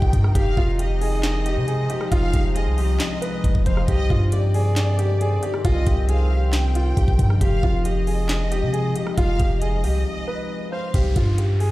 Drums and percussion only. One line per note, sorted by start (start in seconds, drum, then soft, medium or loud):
0.02 kick loud
0.13 kick loud
0.13 closed hi-hat medium
0.24 cross-stick medium
0.35 kick loud
0.35 closed hi-hat medium
0.57 kick loud
0.79 closed hi-hat medium
1.01 open hi-hat medium
1.23 snare loud
1.23 clap medium
1.23 closed hi-hat medium
1.46 closed hi-hat medium
1.68 closed hi-hat medium
1.90 closed hi-hat medium
2.01 cross-stick medium
2.12 kick loud
2.12 closed hi-hat medium
2.33 kick loud
2.33 closed hi-hat medium
2.56 closed hi-hat medium
2.78 open hi-hat medium
3.00 snare loud
3.00 clap medium
3.00 closed hi-hat medium
3.22 closed hi-hat medium
3.44 kick loud
3.44 closed hi-hat medium
3.55 kick loud
3.66 kick loud
3.66 closed hi-hat medium
3.77 cross-stick medium
3.88 kick loud
3.88 closed hi-hat medium
4.10 kick loud
4.32 closed hi-hat medium
4.54 open hi-hat medium
4.76 snare loud
4.76 clap medium
4.76 closed hi-hat medium
4.99 closed hi-hat medium
5.21 closed hi-hat medium
5.43 closed hi-hat medium
5.54 cross-stick medium
5.65 kick loud
5.65 closed hi-hat medium
5.87 kick loud
5.87 closed hi-hat medium
6.09 closed hi-hat medium
6.53 snare loud
6.53 clap medium
6.53 closed hi-hat medium
6.75 closed hi-hat medium
6.97 kick loud
6.97 closed hi-hat medium
7.08 kick loud
7.19 kick medium
7.19 closed hi-hat medium
7.30 cross-stick medium
7.41 kick loud
7.41 closed hi-hat medium
7.63 kick loud
7.85 closed hi-hat medium
8.07 open hi-hat medium
8.29 snare loud
8.29 clap medium
8.29 closed hi-hat medium
8.52 closed hi-hat medium
8.74 closed hi-hat medium
8.96 closed hi-hat medium
9.07 cross-stick medium
9.18 kick loud
9.18 closed hi-hat medium
9.39 kick loud
9.39 closed hi-hat medium
9.62 closed hi-hat medium
9.84 open hi-hat medium
10.94 kick loud
10.94 closed hi-hat medium
11.16 kick loud
11.16 closed hi-hat medium
11.38 closed hi-hat medium
11.60 open hi-hat medium